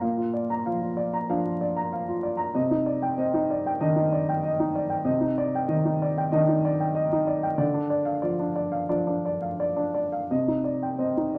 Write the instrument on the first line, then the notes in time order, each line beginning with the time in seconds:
upright piano
Already playing: A#5
0.01 A#2 F5
0.17 F4
0.34 D5
0.50 A#5
0.66 F3 F5
0.81 F4
0.97 D5
1.13 A#5
1.29 F3 D4 F5
1.45 F4
1.61 D5
1.77 A#5
1.93 F5
2.08 F4
2.23 D5
2.37 A#5
2.55 C3 D#5
2.71 D#4
2.86 D5
3.02 G5
3.18 C4 D#5
3.34 D#4
3.50 D5
3.66 G5
3.81 D#3 D4 D#5
3.96 D#4
4.13 D5
4.29 G5
4.43 D#5
4.60 D#4
4.75 D5
4.90 G5
5.05 C3 D#5
5.21 D#4
5.38 D5
5.55 G5
5.68 D#3 D#5
5.85 D#4
6.02 D5
6.18 G5
6.32 D#3 D4 D#5
6.48 D#4
6.65 D5
6.80 G5
6.95 D#5
7.13 D#4
7.27 D5
7.43 G5
7.58 D3 D5
7.74 D4
7.90 D5
8.05 F5
8.22 F3 D5
8.39 D4
8.56 D5
8.72 F5
8.89 F3 D4 D5
9.07 D4
9.25 D5
9.42 F5
9.60 D5
9.76 D4
9.94 D5
10.12 F5
10.31 C3 D#5
10.48 D#4
10.64 D5
10.83 G5
10.98 C4 D#5
11.17 D#4
11.35 D5